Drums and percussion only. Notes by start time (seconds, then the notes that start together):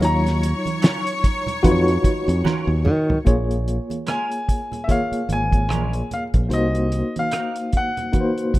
0.01 closed hi-hat, muted conga
0.27 snare, closed hi-hat
0.42 closed hi-hat, muted conga
0.66 closed hi-hat, high conga
0.82 snare, closed hi-hat, muted conga
1.07 closed hi-hat
1.24 kick, closed hi-hat
1.46 closed hi-hat, low conga
1.63 kick, closed hi-hat, muted conga, high conga
1.88 closed hi-hat
2.03 kick, closed hi-hat, high conga
2.29 closed hi-hat
2.45 snare, muted conga, high conga
2.85 mid tom, muted conga, low conga
3.10 floor tom, low conga
3.26 kick, closed hi-hat, muted conga
3.51 closed hi-hat
3.68 closed hi-hat, muted conga
3.90 closed hi-hat, high conga
4.07 cross-stick, closed hi-hat
4.32 closed hi-hat
4.49 kick, closed hi-hat
4.72 closed hi-hat, low conga
4.89 kick, closed hi-hat, muted conga, high conga
5.13 closed hi-hat
5.29 closed hi-hat, high conga
5.52 kick, closed hi-hat
5.70 cross-stick, closed hi-hat, high conga
5.93 closed hi-hat
6.11 closed hi-hat, muted conga, low conga
6.34 kick, closed hi-hat, low conga
6.51 closed hi-hat, muted conga
6.75 closed hi-hat
6.92 closed hi-hat, muted conga
7.16 closed hi-hat, high conga
7.31 cross-stick, closed hi-hat, muted conga
7.56 closed hi-hat
7.73 kick, closed hi-hat, muted conga
7.97 cross-stick, closed hi-hat, low conga
8.13 kick, closed hi-hat, muted conga, high conga
8.38 closed hi-hat
8.54 kick, closed hi-hat, muted conga, high conga